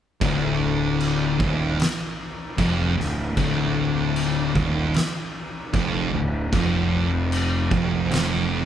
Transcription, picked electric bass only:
0.22 D1
1.40 D#1
2.58 F1
2.98 D1
3.37 D1
4.55 D#1
5.74 F1
6.13 D1
6.53 F1
7.72 F1
8.11 F1

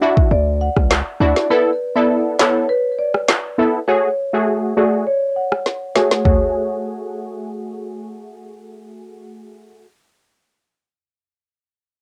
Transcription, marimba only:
0.02 E5
0.31 D5
0.61 F#5
1.21 D5
1.50 B4
1.96 D5
2.39 C#5
2.69 B4
2.99 D5
3.88 C#5
4.33 E5
4.77 D5
5.07 C#5
5.36 F#5
5.96 C#5
6.25 C#5

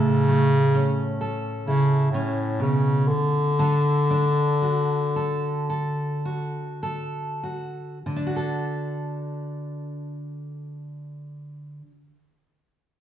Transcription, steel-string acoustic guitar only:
Already playing: A2 A4
0.28 A3
0.75 C#4
1.21 A4
1.68 E4
2.14 C#4
2.59 B2
3.59 D3 A4
4.10 D4
4.62 F#4
5.16 A4
5.70 A4
6.25 F#4
6.83 A4
7.43 F#4
8.06 D3
8.16 D4
8.27 F#4
8.36 A4

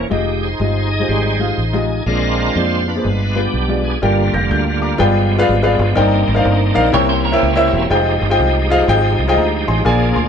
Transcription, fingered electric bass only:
0.11 F1
0.60 G1
1.09 G#1
1.58 A1
2.06 A#1
2.56 F2
3.05 G1
3.54 B1
4.03 G1
4.34 F1
4.51 D2
5.00 G1
5.49 G#1
5.79 G1
5.97 G1
6.28 G#1
6.45 G1
6.76 A#1
6.94 C2
7.43 C#2
7.73 E1
7.91 F1
8.21 G1
8.39 C2
8.88 G#1
9.19 C2
9.37 D2
9.68 A1
9.85 A#1
10.16 D2

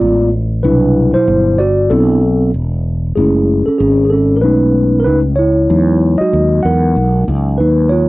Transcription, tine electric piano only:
Already playing: G#3 B3 F4 D5
0.63 B2 F#3 D4 E4 B4
1.14 E4 C5
1.58 F#4 D5
1.90 F#3 B3 C4 D4 E4 A4
3.16 G#3 A3 C#4 E4 G#4
3.66 C#4 A4
3.79 C#4 G#4
4.05 G#4
4.10 C#4 A4
4.36 A#4
4.41 G#3 A3 C#4 D#4 B4
5.00 A#4
5.04 D#4 B4
5.36 E4 C#5
5.69 F#3 G#3 D#4
6.18 F#4 D#5
6.63 A#4 F#5
7.58 D#4 B4
7.89 F4 C#5

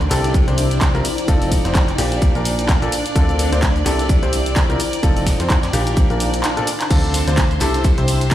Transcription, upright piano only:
0.11 C3 C4 E4 G4 A4
0.48 C3 C4 E4 G4 C5
0.95 F3 C4 E4 G4 A#4
1.28 F3 C4 D#4 F4 A4
1.65 F3 C4 D#4 F4 C5
1.98 A#2 A#3 D4 F4 G4
2.35 A#2 A#3 D4 F4 A#4
2.82 A#2 A#3 D4 F4 A4
3.15 D3 C4 D4 F4 A4
3.52 D3 C4 D4 F4 C5
3.86 C3 C4 E4 G4 A4
4.23 C3 C4 E4 G4 C5
4.69 F3 C4 E4 G4 A#4
5.03 F3 C4 D#4 F4 A4
5.40 F3 C4 D#4 F4 C5
5.73 A#2 A#3 D4 F4 G4
6.10 A#2 A#3 D4 F4 A#4
6.57 A#2 A#3 D4 F4 A4
6.91 D3 C4 D4 F4 A4
7.27 D3 C4 D4 F4 C5
7.61 C3 C4 E4 G4 A4
7.98 C3 C4 E4 G4 C5

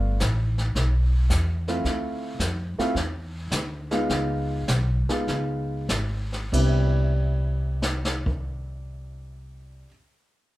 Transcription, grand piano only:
Already playing: A3 B3 D4 F4
1.68 A3 C4 E4 F4
2.79 A3 C4 E4 F4
3.91 G#3 B3 D#4 F4
5.09 G#3 B3 D#4 F4
6.52 C3 G3 B3 D4 E4

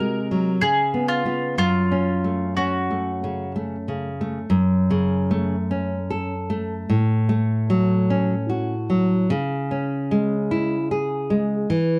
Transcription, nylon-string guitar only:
Already playing: C3 F#4
0.00 G#3
0.31 F#3
0.62 C#3
0.94 B3
1.25 B3 F4
1.58 F#2
1.91 C#4
2.24 A3
2.57 C#4
2.91 A3
3.24 C#3
3.56 A3
3.88 C#3
4.21 A3
4.50 F#2
4.90 C#3
5.31 A3
5.71 C#4
6.10 A4
6.50 A3
6.89 A2
7.29 A3
7.70 F#3
8.10 C#4
8.50 F#4
8.90 F#3
9.30 C#3
9.71 C#4
10.11 G#3
10.51 E4
10.91 G#4
11.30 G#3
11.70 E3

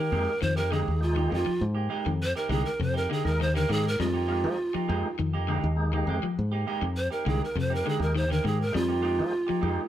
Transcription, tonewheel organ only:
0.12 G#3 A#3 D#4 G4
0.70 G#3 A#3 D#4 G4
1.00 G#3 A#3 D#4 G4
3.24 G#3 A#3 D#4 A#4
3.99 G#3 A#3 D#4 A#4
4.29 D#4 F4
4.44 G#3 A#3 D#4 G4
4.88 G#3 A#3 D#4 G4
5.47 G#3 A#3 D#4 G4
5.76 G#3 A#3 D#4 G4
7.99 G#3 A#3 D#4 G4
8.72 G#3 A#3 D#4 G4
9.03 D#4 G4
9.19 G#3 A#3 D#4 G4
9.62 G#3 A#3 D#4 G4

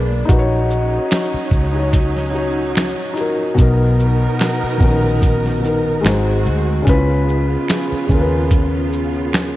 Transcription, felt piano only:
Already playing: A#3 G#4 B4 D5
0.25 D#4 F#4
0.32 B4
0.39 C#5
1.72 D#4 F#4
1.79 C#5
2.31 D#4 F#4
2.38 C#5
3.13 D#4 F#4
3.20 A#4
3.54 B2 B3
3.59 D#4 A#4
4.77 D#3 B3
4.82 C#4 A#4
4.88 D#4
5.60 D#3 B3
5.65 D#4 A#4
6.01 G#3 D#4
6.05 F#4 C5
6.82 C#3 C#4
6.87 E4 B4
6.93 F4
8.07 C#3 C#4
8.12 F4 A#4
8.21 B4

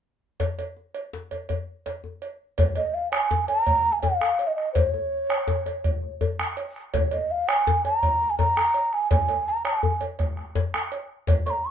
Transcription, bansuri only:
2.58 C#5
2.76 D#5
2.94 F5
3.12 G#5
3.48 A#5
3.92 G#5
4.01 F5
4.47 D#5
4.55 D#5
4.73 C5
4.87 C#5
6.94 C#5
7.12 D#5
7.31 F5
7.48 G#5
7.85 A#5
8.30 G#5
8.38 A#5
8.94 G#5
9.11 G#5
9.49 A#5
9.65 G#5
11.46 C#6
11.50 A#5
11.65 C#6

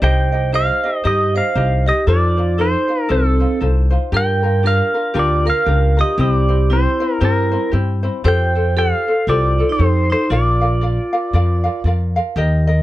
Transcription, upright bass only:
0.02 C2
1.05 G2
1.56 C2
2.07 F2
3.10 C2
3.62 C2
4.12 G2
5.15 D2
5.67 C#2
6.18 C2
7.21 G2
7.73 G2
8.24 F2
9.27 C2
9.79 F2
10.30 A#1
11.33 F2
11.84 F2
12.36 D#2

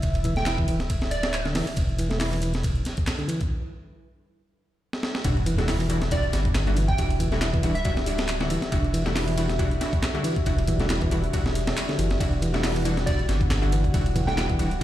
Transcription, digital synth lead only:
0.37 G5
0.46 G5
1.11 D5
6.12 D5
6.88 G5
6.97 G5
7.75 E5
7.85 E5
13.06 D5
14.27 G5
14.37 G5

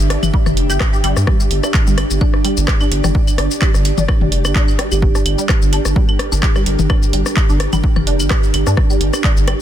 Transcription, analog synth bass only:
0.00 G1
0.23 G1
0.46 F1
0.70 G1
1.04 G1
1.17 G2
1.51 G1
1.87 G1
2.10 G1
2.57 G1
2.91 G1
3.04 G1
3.38 G1
3.74 G1
3.98 G1
4.21 F1
4.45 G1
4.92 G1
5.26 G1
5.62 G1
5.85 G1
6.32 G1
6.66 G1
6.79 G1
7.13 G1
7.49 G1
7.73 G1
7.96 F1
8.20 G1
8.54 G1
8.67 G2
9.01 G1
9.37 G1

